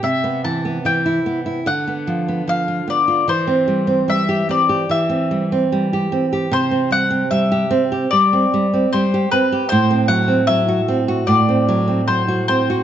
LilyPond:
<<
  \new Staff \with { instrumentName = "Mandolin" } { \time 4/4 \key c \lydian \tempo 4 = 74 e''8 a''8 g''4 fis''4 f''8 d''8 | c''4 e''8 d''8 e''4 r4 | c''8 fis''8 e''4 d''4 c''8 b'8 | c''8 fis''8 e''4 d''4 c''8 c''8 | }
  \new Staff \with { instrumentName = "Nylon-string guitar" } { \time 4/4 \key c \lydian c16 b16 e16 b16 e16 e'16 b16 e'16 d16 b16 f16 b16 f16 f'16 b16 f'16 | e16 c'16 g16 c'16 g16 g'16 c'16 g'16 e16 c'16 g16 c'16 g16 g'16 c'16 g'16 | c16 c'16 g16 c'16 g16 g'16 c'16 g'16 g16 c'16 g16 c'16 g16 g'16 c'16 g'16 | a,16 c'16 fis16 c'16 fis16 fis'16 c'16 fis'16 a,16 c'16 fis16 c'16 fis16 fis'16 c'16 fis'16 | }
>>